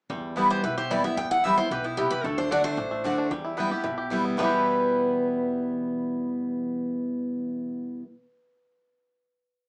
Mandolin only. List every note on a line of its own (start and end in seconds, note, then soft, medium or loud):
0.36 0.46 B3 medium
0.36 0.46 E4 loud
0.36 0.46 B4 loud
0.36 0.46 G5 loud
0.90 0.99 B3 medium
0.90 1.00 E4 medium
0.90 1.00 B4 medium
0.90 1.00 G5 loud
1.43 1.53 B3 medium
1.43 1.53 E4 loud
1.43 1.53 B4 medium
1.43 1.54 G5 loud
1.97 2.07 B3 medium
1.97 2.07 E4 medium
1.97 2.07 B4 medium
1.97 2.07 G5 loud
2.50 2.60 A3 medium
2.50 2.60 F#4 medium
2.50 2.60 D5 loud
2.50 2.60 F#5 loud
3.04 3.13 A3 medium
3.04 3.13 F#4 medium
3.04 3.14 D5 loud
3.04 3.14 F#5 loud
3.57 3.66 B3 medium
3.57 3.67 E4 loud
3.57 3.67 B4 loud
3.57 3.67 G5 loud
4.11 4.20 B3 medium
4.11 4.20 E4 medium
4.11 4.21 B4 medium
4.11 4.21 G5 loud
4.37 8.01 B3 medium
4.37 8.02 E4 medium
4.37 8.03 B4 medium
4.37 8.03 G5 medium